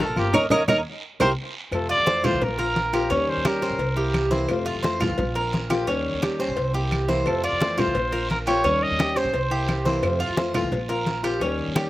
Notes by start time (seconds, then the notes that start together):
Already playing: A#3 C4 F4
0.00 A4 A#4, high bongo, low bongo, short guiro
0.08 A#1
0.16 G1 A#3 C4 F4 G4, high conga, short guiro, claves
0.33 D#2 A#3 C#4 D#4 A#4 C#5 D#5, low bongo, low conga, long guiro, claves
0.50 D#2 A#3 C#4 D#4 A#4 C#5 D#5, low bongo, low conga, long guiro, claves
0.68 D#2 A#3 C#4 D#4 A#4 C#5 D#5, low bongo, low conga, long guiro, claves
1.20 C2 A#3 C4 E4 G4 A#4 C5, low bongo, low conga, long guiro, claves
1.71 F2 C3 A3 C4 F4 A4, cowbell, high conga, long guiro, claves
1.89 F4 D5, high conga
1.98 F2
2.06 E3 A3 C4 F4 C5, cowbell, high conga, short guiro
2.24 E3 A3 C4 F4 C5, cowbell, high conga, low conga, short guiro, claves
2.33 C2
2.41 A#1 A#4, muted nylon-string guitar stroke, cowbell, high conga, low conga, long guiro
2.59 A#3 C4 F4 A#4, cowbell, high conga
2.76 cowbell, high conga, short guiro
2.93 A#3 C4 F4 G4, cowbell, short guiro, claves
3.10 D#2 D#3 G3 C#4 G4 C#5, cowbell, high conga, long guiro
3.28 C5, high conga
3.36 D#2
3.45 D#3 G3 C#4 G4 A#4, cowbell, high conga, short guiro, claves
3.62 G3 C#4 G4 C5, high conga, short guiro
3.70 A#1
3.79 C2, muted nylon-string guitar stroke, cowbell, high conga, long guiro
3.97 A#3 C4 E4 G4, high conga
4.14 cowbell, high conga, short guiro, claves
4.31 E3 A#3 C4 E4 C5, high conga, short guiro
4.48 F2 C3 A3 C4 F4, cowbell, high conga, long guiro, claves
4.66 F4, high conga
4.75 F2
4.83 E3 A3 C4 F4 C5, cowbell, high conga, short guiro
5.00 E3 A3 C4 F4, cowbell, high conga, low conga, short guiro, claves
5.09 C2
5.18 A#1, muted nylon-string guitar stroke, cowbell, high conga, low conga, long guiro
5.35 A#3 C4 F4 A#4, cowbell, high conga
5.53 cowbell, high conga, short guiro
5.70 A#3 C4 F4 G4, cowbell, high conga, short guiro, claves
5.87 D#2 D#3 G3 C#4 G4, cowbell, high conga, long guiro
6.06 high conga
6.14 D#2
6.22 D#3 G3 C#4 G4, cowbell, high conga, short guiro, claves
6.39 G3 C#4 G4 C5, high conga, short guiro
6.48 A#1
6.56 C2, muted nylon-string guitar stroke, cowbell, high conga, long guiro
6.74 A#3 C4 E4 G4, high conga
6.91 cowbell, high conga, short guiro, claves
7.08 E3 A#3 C4 E4 C5, high conga, short guiro
7.26 F2 C3 A3 C4 F4 A4, cowbell, high conga, long guiro, claves
7.44 F4 D5, high conga
7.52 F2
7.60 E3 A3 C4 F4 C5, cowbell, high conga, short guiro
7.77 E3 A3 C4 F4 C5, cowbell, high conga, low conga, short guiro, claves
7.87 C2
7.94 A#1, muted nylon-string guitar stroke, cowbell, high conga, long guiro
8.12 A#3 C4 F4 A#4, cowbell, high conga
8.29 A#4, cowbell, high conga, short guiro
8.46 C4 F4 G4 C#5, cowbell, short guiro, claves
8.50 A#3
8.64 D#2 D#3 G3 C#4 G4, cowbell, high conga, long guiro
8.83 D#5, high conga
8.91 D#2
8.99 D#3 G3 C#4 G4, cowbell, high conga, short guiro, claves
9.16 G3 C#4 G4 C5, high conga, short guiro
9.24 A#1
9.33 C2, muted nylon-string guitar stroke, cowbell, high conga, long guiro
9.51 A#3 C4 E4 G4, high conga
9.68 cowbell, high conga, short guiro, claves
9.85 E3 A#3 C4 E4 C5, high conga, short guiro
10.02 F2 C3 A3 C4 F4, cowbell, high conga, long guiro, claves
10.20 F4, high conga
10.29 F2
10.37 E3 A3 C4 F4 C5, cowbell, high conga, short guiro
10.54 E3 A3 C4 F4, cowbell, high conga, low conga, short guiro, claves
10.63 C2
10.71 A#1, muted nylon-string guitar stroke, cowbell, high conga, low conga, long guiro
10.89 A#3 C4 F4 A#4, cowbell, high conga
11.06 cowbell, high conga, short guiro
11.23 A#3 C4 F4 G4, cowbell, short guiro, claves
11.41 D#2 D#3 G3 C#4 G4, cowbell, high conga, long guiro
11.59 high conga
11.67 D#2
11.75 D#3 G3 C#4 G4, cowbell, high conga, short guiro, claves